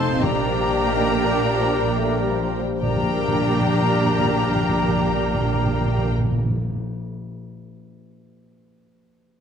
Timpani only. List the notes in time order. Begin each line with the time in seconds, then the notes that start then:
0.23 A#2
2.83 A#2
2.89 A#2
2.96 A#2
3.03 A#2
3.09 A#2
3.16 A#2
3.22 A#2
3.28 A#2
3.35 A#2
3.41 A#2
3.47 A#2
3.55 A#2
3.61 A#2
3.67 A#2
3.74 A#2
3.80 A#2
3.86 A#2
3.93 A#2
3.99 A#2
4.05 A#2
4.12 A#2
4.19 A#2
4.25 A#2
4.31 A#2
4.37 A#2
4.43 A#2
4.50 A#2
4.56 A#2
4.62 A#2
4.69 A#2
4.75 A#2
4.82 A#2
4.89 A#2
4.95 A#2
5.02 A#2
5.08 A#2
5.15 A#2
5.21 A#2
5.28 A#2
5.34 A#2
5.41 A#2
5.47 A#2
5.54 A#2
5.60 A#2
5.66 A#2
5.73 A#2
5.79 A#2
5.86 A#2
5.92 A#2
5.98 A#2
6.05 A#2
6.11 A#2
6.18 A#2
6.24 A#2
6.31 A#2
6.38 A#2
6.44 A#2
6.50 A#2
6.56 A#2
6.63 A#2
6.69 A#2
6.76 A#2